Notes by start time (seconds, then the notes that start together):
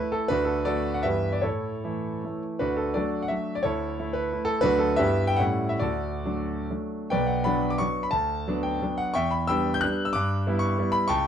Already playing: A3 E4 B4
0.12 A4
0.28 D2 D4 F#4 B4
0.45 A4
0.65 A3 F#4 A4 D5
0.94 F#5
1.03 G2 E3 B3 E4 G4 B4 E5
1.33 D5
1.41 A2 E4 A4 C#5
1.84 E3 A3 E4
2.24 E3 A3 E4
2.59 D2 D4 F#4 B4
2.77 A4
2.94 F#3 A3 D4 F#4 A4 D5
3.23 F#5
3.28 F#3 A3 D4 E5
3.55 D5
3.63 D2 E4 A4 C#5
3.99 A3 E4
4.13 B4
4.32 A3 E4
4.45 A4
4.61 D2 F#3 A3 D4 F#4 B4
4.79 A4
4.96 G2 G3 B3 E4 G4 B4 E5
5.27 G5
5.37 A2 G3 C#4 E4 F#5
5.69 E5
5.79 D2 F#4 A4 D5
6.25 F#3 A3 D4
6.71 F#3 A3 D4
7.10 B1 B4 D5 G5
7.27 F#5
7.44 F#3 B3 D4 D5 F#5 B5
7.70 D6
7.78 F#3 B3 D4 C#6
8.03 B5
8.11 D2 A5
8.48 F#3 B3 D4
8.63 G5
8.82 F#3 B3 D4
8.98 F#5
9.14 E2 E5 G5 C#6
9.31 B5
9.47 G3 B3 D4 G5 B5 E6
9.74 G6
9.81 G3 B3 D4 F#6
10.05 E6
10.13 G2 D6
10.47 G3 B3 E4
10.59 C#6
10.78 G3 B3 E4
10.92 B5
11.08 C#2 G5 A5 C#6